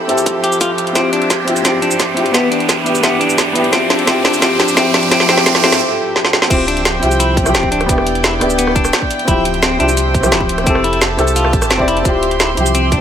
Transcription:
Already playing: F3 C4 E4 G4 A4 E5, riser
0.07 C4 E4 G4 A4, closed hi-hat, shaker
0.18 closed hi-hat, shaker
0.26 kick, closed hi-hat, shaker
0.44 G4, closed hi-hat, shaker
0.52 shaker
0.61 F4, kick, closed hi-hat, shaker
0.78 closed hi-hat, shaker
0.87 closed hi-hat
0.93 C4 D4 E4 F4 E5, kick, snare, closed hi-hat, shaker
0.99 G4
1.13 D4, closed hi-hat
1.22 closed hi-hat
1.30 kick, snare, closed hi-hat, shaker
1.45 C4 E4 F4, closed hi-hat, shaker
1.51 G4
1.56 closed hi-hat, shaker
1.62 C4 E4 F4, kick, snare, closed hi-hat, shaker
1.68 G4
1.82 D4, closed hi-hat, shaker
1.91 shaker
2.00 kick, snare, closed hi-hat, shaker
2.14 C4 E4 F4, closed hi-hat
2.20 G4
2.26 closed hi-hat
2.31 E3 B3 E4, kick, snare, closed hi-hat, shaker
2.37 G4
2.51 D4, closed hi-hat
2.60 closed hi-hat
2.69 kick, snare, closed hi-hat, shaker
2.84 B3 E4, closed hi-hat, shaker
2.89 G4
2.95 closed hi-hat, shaker
3.01 B3 E4, kick, snare, closed hi-hat, shaker
3.07 G4
3.21 D4, closed hi-hat, shaker
3.30 shaker
3.38 kick, snare, closed hi-hat, shaker
3.53 B3 E4, closed hi-hat, shaker
3.59 G4
3.64 closed hi-hat
3.72 F3 C4 E4 F4 G4 E5, kick, snare, closed hi-hat, shaker
3.90 D4, snare, closed hi-hat
3.99 closed hi-hat
4.05 C4 E4 F4, kick, snare, closed hi-hat, shaker
4.11 G4
4.25 D4, snare, closed hi-hat, shaker
4.34 closed hi-hat, shaker
4.39 C4 E4, kick, snare, closed hi-hat, shaker
4.43 F4 G4
4.60 D4, snare, closed hi-hat, shaker
4.68 shaker
4.74 C4 E4 F4, kick, snare, closed hi-hat, shaker
4.80 G4
4.94 D4, snare, closed hi-hat
5.03 closed hi-hat
5.08 C4 E4 F4 A4, kick, snare, closed hi-hat, shaker
5.14 G4
5.20 snare
5.26 C4 E4 F4, snare, closed hi-hat
5.32 G4
5.37 snare, closed hi-hat
5.43 C4 E4, kick, snare, closed hi-hat, shaker
5.47 F4 G4
5.55 snare
5.61 C4 E4 F4, snare, closed hi-hat, shaker
5.67 G4
5.72 snare, closed hi-hat, shaker
6.16 snare
6.25 snare
6.33 snare
6.42 snare
6.48 D1 F3 C4 E4 F4 C5 E5 G5, kick, closed hi-hat, crash, shaker
6.53 G4
6.68 D4, closed hi-hat
6.77 closed hi-hat
6.85 snare, closed hi-hat, shaker
7.00 C2 C4 E4 F4, closed hi-hat, shaker
7.05 G4
7.11 closed hi-hat, shaker
7.20 E4, closed hi-hat, shaker
7.37 kick, closed hi-hat, shaker
7.43 F3 C4 E4, cross-stick, shaker
7.49 G4
7.54 D1 C4, snare, closed hi-hat, shaker
7.63 kick
7.72 D4, closed hi-hat
7.81 cross-stick, closed hi-hat
7.86 E1 B3 D4 E4 D5 G5, kick, closed hi-hat, shaker
7.92 G4
7.98 cross-stick
8.07 closed hi-hat
8.15 closed hi-hat
8.24 E4, snare, closed hi-hat, shaker
8.40 D1 B3 D4 E4 G4, cross-stick, closed hi-hat, shaker
8.50 closed hi-hat, shaker
8.58 B3, closed hi-hat, shaker
8.67 cross-stick
8.75 D4, kick, closed hi-hat, shaker
8.85 cross-stick, shaker
8.93 snare, closed hi-hat, shaker
9.02 kick
9.11 closed hi-hat, shaker
9.19 closed hi-hat
9.25 D1 F3 C4 E4 C5 E5, kick, closed hi-hat, shaker
9.29 F3 G4
9.45 closed hi-hat
9.54 closed hi-hat
9.62 C4, snare, closed hi-hat, shaker
9.77 C2 C4 D4 E4 F4, closed hi-hat, shaker
9.83 G4
9.89 closed hi-hat, shaker
9.97 closed hi-hat, shaker
10.14 kick, closed hi-hat, shaker
10.20 F3 C4 E4, cross-stick, shaker
10.26 G4
10.32 D1 E4, snare, closed hi-hat, shaker
10.40 kick
10.49 closed hi-hat
10.58 cross-stick, closed hi-hat
10.64 F1 C4 E4 G4 A5, kick, closed hi-hat, shaker
10.70 A4
10.75 cross-stick
10.84 E4, closed hi-hat
10.93 closed hi-hat
11.01 snare, closed hi-hat, shaker
11.17 C2 C4 E4 G4 A4, cross-stick, closed hi-hat, shaker
11.27 closed hi-hat, shaker
11.36 F4, closed hi-hat, shaker
11.45 cross-stick
11.53 A1, kick, closed hi-hat, shaker
11.62 cross-stick, shaker
11.70 F1 C4, snare, closed hi-hat, shaker
11.78 C4 E4 G4 D5, kick
11.88 E4, closed hi-hat, shaker
11.97 closed hi-hat
12.02 D1 C4 E4 C6, kick, closed hi-hat, shaker
12.06 F4 G4
12.23 closed hi-hat
12.31 closed hi-hat
12.40 E4, snare, closed hi-hat, shaker
12.54 C2 F3 C4 E4, closed hi-hat, shaker
12.60 G4
12.66 closed hi-hat, shaker
12.75 C4, closed hi-hat, shaker
12.92 D4, kick, closed hi-hat, shaker
12.98 C4

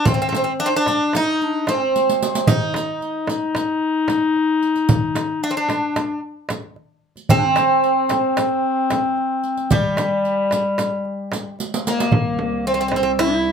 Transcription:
0.05 C4, riq, frame drum, darbuka dum
0.14 C4
0.22 C4
0.29 C4, frame drum
0.35 C4, riq
0.44 C4
0.60 D4, darbuka ka
0.66 C4
0.76 D4
0.86 riq, darbuka tek, frame drum
1.13 D#4, riq, darbuka tek, frame drum
1.41 D4, riq, darbuka ka
1.67 C4, riq, darbuka tek, frame drum
1.81 darbuka ka
1.94 riq, darbuka ka
2.09 riq
2.21 riq, darbuka ka
2.35 riq
2.47 D#4, riq, darbuka dum, frame drum
2.74 riq, darbuka tek, frame drum
3.01 riq, darbuka ka
3.27 riq, darbuka tek, frame drum
3.55 riq, darbuka tek, frame drum
4.08 riq, darbuka tek, frame drum
4.22 darbuka ka
4.36 darbuka ka
4.63 riq
4.76 riq, darbuka ka
4.89 riq, frame drum, darbuka dum
5.15 riq, darbuka tek, frame drum
5.43 D4, riq, darbuka ka
5.51 C4
5.57 D4
5.69 riq, darbuka tek, frame drum
5.96 riq, darbuka tek, frame drum
6.49 riq, darbuka tek, frame drum
6.63 darbuka ka
6.76 darbuka ka
7.16 riq, darbuka ka
7.29 C4, riq, darbuka dum, frame drum
7.38 D4
7.45 C4
7.56 riq, darbuka tek, frame drum
7.83 riq, darbuka ka
8.09 riq, darbuka tek, frame drum
8.37 riq, darbuka tek, frame drum
8.90 riq, darbuka tek, frame drum
9.04 darbuka ka
9.17 darbuka ka
9.44 riq
9.57 riq, darbuka ka
9.71 G3, riq, darbuka dum, frame drum
9.97 riq, darbuka tek, frame drum
10.24 riq, darbuka ka
10.51 riq, darbuka tek, frame drum
10.78 riq, darbuka tek, frame drum
11.05 darbuka ka
11.32 riq, darbuka tek, frame drum
11.45 darbuka ka
11.59 riq, darbuka ka
11.74 riq
11.85 A#3, riq, darbuka ka
11.98 riq, darbuka ka
12.11 C2, darbuka dum, frame drum
12.39 A#3, frame drum
12.66 C4, darbuka ka
12.74 C4
12.81 C4
12.88 C4, darbuka tek, frame drum
12.96 C4
13.03 C4
13.19 E4, darbuka tek, frame drum

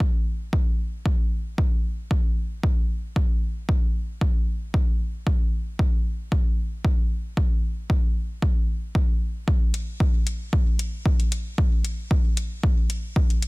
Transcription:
0.00 kick
0.53 kick
1.06 kick
1.58 kick
2.11 kick
2.63 kick
3.16 kick
3.69 kick
4.21 kick
4.74 kick
5.27 kick
5.79 kick
6.32 kick
6.85 kick
7.37 kick
7.90 kick
8.42 kick
8.95 kick
9.48 kick
9.74 closed hi-hat
10.00 kick
10.27 closed hi-hat
10.53 kick
10.79 closed hi-hat
11.06 kick
11.20 closed hi-hat
11.32 closed hi-hat
11.58 kick
11.85 closed hi-hat
12.11 kick
12.37 closed hi-hat
12.63 kick
12.90 closed hi-hat
13.16 kick
13.30 closed hi-hat
13.42 closed hi-hat

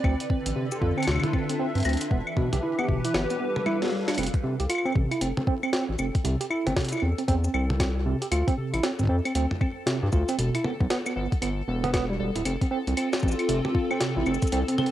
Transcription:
Already playing: C4 B4 D5
0.04 D2 D3 C4, kick, claves
0.20 A4, closed hi-hat
0.30 C4, kick
0.35 D4
0.46 A1, closed hi-hat
0.56 C3 F4
0.72 G4, shaker
0.82 F2 F4, kick
0.98 C4 E5, claves
1.00 closed hi-hat, claves
1.03 claves
1.05 D2 C3, snare, claves
1.07 claves
1.12 claves
1.16 claves
1.20 E4, closed hi-hat, mid tom, claves
1.33 C4, kick, claves
1.49 C4, closed hi-hat
1.59 C4
1.75 G2 C4, closed hi-hat
1.78 closed hi-hat
1.80 closed hi-hat
1.83 D2, closed hi-hat
1.85 C4, closed hi-hat, claves, shaker
1.89 closed hi-hat
1.93 closed hi-hat
1.97 closed hi-hat
2.01 closed hi-hat, shaker
2.11 E1 E3 B3, kick
2.27 claves
2.33 B2 G4, kick, mid tom
2.53 B1 G4, closed hi-hat, mid tom
2.59 B4
2.63 E4
2.79 B3, claves
2.88 G1 B2, kick
3.05 E4, closed hi-hat
3.14 G1 G3 B3, snare, claves
3.30 B3 A4, closed hi-hat, shaker
3.40 B3
3.56 B4, mid tom
3.62 F5, high tom, claves
3.66 E4
3.82 B3, snare
3.85 snare
3.87 snare
3.89 snare
3.92 G3, snare
3.96 snare
4.00 snare
4.04 snare
4.08 D4, snare, closed hi-hat, claves
4.15 closed hi-hat
4.18 F1 C4 A4, closed hi-hat, claves
4.23 closed hi-hat
4.26 closed hi-hat
4.34 kick, closed hi-hat
4.44 C3
4.60 C2 G4, closed hi-hat
4.69 F4, closed hi-hat, claves
4.75 claves
4.78 claves
4.85 C4, claves
4.92 A1 C3, kick, claves
5.11 E4, closed hi-hat, claves
5.21 F1 C4, closed hi-hat
5.37 C4, mid tom
5.47 C4, kick
5.63 C4, claves
5.73 C4, snare
5.89 A1
5.99 F1 C4, claves, shaker
6.15 kick, closed hi-hat
6.25 C2 C3, closed hi-hat
6.41 G4, closed hi-hat
6.50 E4, claves
6.66 G1 C4, closed hi-hat, mid tom
6.76 C3, kick, snare, closed hi-hat
6.80 closed hi-hat
6.85 closed hi-hat
6.88 E4, closed hi-hat
6.93 claves, shaker
6.95 claves
6.97 claves
7.00 E2 C4, claves
7.18 C4, closed hi-hat
7.28 E2 C4, kick, closed hi-hat
7.44 C4, shaker
7.54 C2 C4, claves
7.70 mid tom
7.80 C4, kick, snare, closed hi-hat, claves
8.06 C3
8.22 G4, closed hi-hat
8.32 D2 F4, closed hi-hat, claves
8.48 C4, kick, closed hi-hat
8.57 C3
8.73 A1 E4, closed hi-hat, claves
8.83 C4, snare, closed hi-hat
8.99 C4, kick, shaker
9.01 kick
9.03 kick
9.05 kick
9.07 F2 C4, kick
9.25 C4, closed hi-hat, claves
9.35 D2 C4, closed hi-hat
9.51 mid tom
9.61 C4, kick, claves
9.87 C3, snare, closed hi-hat
10.03 G2 G4
10.13 D2 F4, kick, shaker
10.29 C4, closed hi-hat, shaker
10.39 E1 B2, closed hi-hat
10.55 E4, closed hi-hat, claves
10.64 B3, mid tom
10.80 B1 B3, kick
10.90 B3, snare, closed hi-hat
11.06 B3, claves, shaker
11.16 G1 B3
11.32 kick, closed hi-hat
11.42 G1 B3, closed hi-hat, claves
11.68 E1 B3
11.84 B3, closed hi-hat, mid tom
11.94 B3, kick, snare, closed hi-hat, claves
12.10 G3
12.20 E1 G3
12.36 D1 E4, closed hi-hat
12.45 F1 C4, closed hi-hat, claves
12.61 C4, kick, closed hi-hat
12.66 F4
12.71 C4
12.87 C2 C4 A4, closed hi-hat
12.97 C4, closed hi-hat, claves
13.13 snare, shaker
13.20 A1 C4, kick, shaker
13.23 shaker
13.28 shaker
13.32 shaker
13.39 closed hi-hat, claves
13.49 F1 C3, closed hi-hat
13.65 G4, mid tom
13.75 F4, kick
13.91 C4, claves
14.01 C3, snare, closed hi-hat
14.17 A1 E4
14.26 F1 C4, claves, shaker
14.35 shaker
14.42 C4, kick, closed hi-hat, shaker
14.47 shaker
14.52 C2 C3 C4, closed hi-hat
14.67 C4 B4, closed hi-hat
14.78 C4 E4, mid tom, claves
14.86 closed hi-hat

